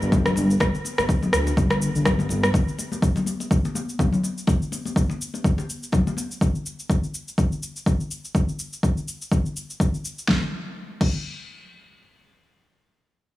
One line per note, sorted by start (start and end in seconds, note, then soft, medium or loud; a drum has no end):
0.02 0.32 G1 loud
0.02 shaker soft
0.12 kick loud
0.12 muted conga soft
0.12 high conga loud
0.12 low conga loud
0.12 shaker medium
0.25 cross-stick medium
0.25 low conga medium
0.25 shaker soft
0.36 0.55 G1 loud
0.36 muted conga soft
0.36 shaker medium
0.51 shaker soft
0.60 0.70 G1 loud
0.60 kick loud
0.60 cross-stick medium
0.60 muted conga medium
0.60 shaker medium
0.75 shaker soft
0.85 muted conga soft
0.85 shaker medium
0.98 1.29 G1 medium
0.98 cross-stick medium
0.98 high conga medium
0.98 shaker soft
1.09 kick loud
1.09 shaker medium
1.22 muted conga medium
1.22 low conga medium
1.22 shaker soft
1.33 1.52 D2 medium
1.33 cross-stick medium
1.33 shaker medium
1.47 muted conga soft
1.47 shaker soft
1.57 1.89 G1 medium
1.57 kick loud
1.57 shaker medium
1.70 cross-stick medium
1.70 muted conga soft
1.70 high conga medium
1.70 shaker soft
1.82 shaker medium
1.95 2.25 G1 loud
1.95 shaker soft
2.05 kick loud
2.05 cross-stick medium
2.05 muted conga soft
2.05 low conga medium
2.05 shaker medium
2.19 high conga medium
2.19 shaker soft
2.29 2.49 G1 loud
2.29 muted conga soft
2.29 high conga medium
2.29 shaker medium
2.43 cross-stick medium
2.43 shaker soft
2.54 kick loud
2.54 muted conga soft
2.54 shaker medium
2.69 shaker soft
2.79 muted conga soft
2.79 shaker medium
2.92 high conga medium
2.92 shaker soft
3.02 kick loud
3.02 shaker medium
3.16 muted conga soft
3.16 low conga medium
3.16 shaker soft
3.26 high conga medium
3.26 shaker medium
3.40 muted conga soft
3.40 shaker soft
3.51 kick loud
3.51 shaker soft
3.65 muted conga medium
3.65 shaker soft
3.75 high conga medium
3.75 shaker medium
3.89 shaker soft
3.99 kick loud
3.99 muted conga soft
3.99 high conga loud
3.99 low conga medium
3.99 shaker soft
4.13 low conga medium
4.13 shaker soft
4.24 muted conga soft
4.24 shaker medium
4.38 shaker soft
4.47 kick loud
4.47 muted conga medium
4.47 shaker soft
4.62 shaker soft
4.72 muted conga soft
4.72 shaker medium
4.85 high conga medium
4.85 shaker soft
4.96 kick medium
4.96 shaker soft
5.10 muted conga medium
5.10 shaker soft
5.21 shaker medium
5.34 muted conga soft
5.34 shaker soft
5.44 kick loud
5.44 shaker soft
5.58 muted conga soft
5.58 high conga medium
5.58 shaker soft
5.70 shaker medium
5.83 shaker soft
5.92 kick loud
5.92 muted conga soft
5.92 low conga medium
5.92 shaker soft
6.07 high conga medium
6.07 shaker soft
6.17 muted conga soft
6.17 high conga medium
6.17 shaker medium
6.31 shaker soft
6.41 kick loud
6.41 shaker soft
6.55 shaker soft
6.66 shaker medium
6.79 shaker soft
6.90 kick medium
6.90 shaker soft
7.04 shaker soft
7.14 shaker medium
7.28 shaker soft
7.38 kick loud
7.38 shaker soft
7.52 shaker soft
7.63 shaker medium
7.76 shaker soft
7.86 kick loud
7.86 shaker soft
8.00 shaker soft
8.11 shaker medium
8.25 shaker soft
8.35 kick loud
8.35 shaker soft
8.49 shaker soft
8.59 shaker medium
8.73 shaker soft
8.83 kick medium
8.83 shaker soft
8.97 shaker soft
9.08 shaker medium
9.22 shaker soft
9.32 kick loud
9.32 shaker soft
9.46 shaker soft
9.57 shaker medium
9.70 shaker soft
9.80 kick loud
9.80 shaker soft
9.94 shaker soft
10.05 shaker medium
10.18 shaker soft
10.28 kick loud
10.28 snare medium
11.01 kick loud
11.01 crash medium